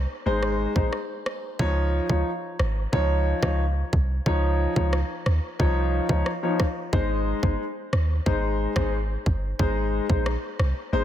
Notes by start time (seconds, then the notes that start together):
0.26 G#1 G#3 D#4 C5
0.43 cross-stick
0.76 A#1 G#3 D#4 C5, kick
0.93 cross-stick
1.26 cross-stick
1.59 C#2 F3 D#4 C#5, kick
2.09 C#2 F3 D#4 C#5, kick
2.59 G#1, cross-stick
2.92 C#2 F3 D#4 C#5, kick
3.43 C#2 F3 D#4 C#5, kick, cross-stick
3.93 C2, kick
4.26 C#2 F3 D#4 C#5, kick
4.76 C#2 F3 D#4 C#5, kick
4.93 cross-stick
5.26 D#2, cross-stick
5.59 C2 F3 D#4 C#5, kick
6.09 C#2 F3 D#4 C#5, kick
6.26 cross-stick
6.43 F3 D#4 C#5
6.60 kick, cross-stick
6.93 G#1 G#3 D#4 C5, kick
7.43 G#1 G#3 D#4 C5, kick
7.93 D#2, cross-stick
8.26 G#1 G#3 D#4 C5, kick
8.76 G#1 G#3 D#4 C5, kick, cross-stick
9.26 G1, kick
9.59 G#1 G#3 D#4 C5, kick
10.09 A#1 G#3 D#4 C5, kick
10.26 cross-stick
10.59 C2, cross-stick
10.93 G#1 G#3 D#4 C5